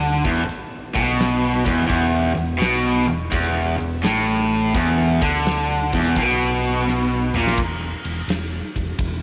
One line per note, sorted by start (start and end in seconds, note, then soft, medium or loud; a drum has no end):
0.00 0.20 D2 medium
0.00 0.23 D3 loud
0.24 0.47 E1 medium
0.24 0.44 E2 loud
0.24 kick medium
0.24 closed hi-hat medium
0.46 muted overdriven electric guitar stroke medium
0.46 muted fingered electric bass stroke soft
0.46 closed hi-hat medium
0.95 1.63 B1 medium
0.95 1.65 B2 medium
0.95 kick loud
0.95 closed hi-hat medium
1.19 snare loud
1.19 closed hi-hat medium
1.65 1.89 E1 medium
1.65 1.86 E2 medium
1.65 kick loud
1.65 closed hi-hat medium
1.87 2.34 E1 medium
1.87 2.34 E2 loud
1.87 kick loud
1.87 closed hi-hat medium
2.35 2.59 E1 medium
2.35 2.55 E2 medium
2.35 closed hi-hat medium
2.58 3.05 B1 medium
2.58 3.06 B2 loud
2.58 snare loud
2.58 closed hi-hat medium
3.06 3.31 E1 medium
3.06 3.26 E2 medium
3.06 closed hi-hat medium
3.31 3.76 E1 medium
3.31 3.77 E2 medium
3.31 kick loud
3.31 closed hi-hat medium
3.78 4.02 E1 medium
3.78 3.98 E2 medium
3.78 closed hi-hat medium
4.03 4.71 A1 medium
4.03 4.73 A2 loud
4.03 snare loud
4.03 closed hi-hat medium
4.52 closed hi-hat medium
4.74 5.19 E1 medium
4.74 5.20 E2 medium
4.74 kick loud
4.74 closed hi-hat medium
5.21 5.89 D2 medium
5.21 5.91 D3 medium
5.21 kick loud
5.21 closed hi-hat medium
5.45 snare loud
5.45 closed hi-hat medium
5.93 6.15 E1 medium
5.93 6.16 E2 loud
5.93 kick loud
5.93 closed hi-hat medium
6.16 7.31 B1 medium
6.16 7.33 B2 loud
6.16 kick loud
6.16 closed hi-hat medium
6.63 closed hi-hat medium
6.88 snare medium
7.34 7.57 A#1 medium
7.34 7.58 A#2 medium
7.34 mid tom medium
7.47 snare medium
7.57 7.89 E1 medium
7.57 kick loud
7.57 crash loud
8.05 8.20 E1 medium
8.05 ride medium
8.27 8.59 E1 medium
8.27 snare loud
8.27 ride medium
8.76 8.91 E1 medium
8.76 kick medium
8.76 ride medium
8.99 9.22 E1 medium
8.99 kick loud
8.99 ride medium